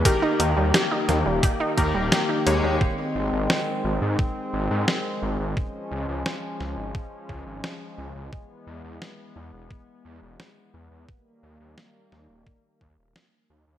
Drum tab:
HH |xxxxxxxx|--------|--------|--------|
SD |--oo--o-|--o---o-|--oo--o-|--o---o-|
BD |o---oo--|o---o---|o---oo--|o---o---|

HH |--------|
SD |--oo--o-|
BD |o---oo--|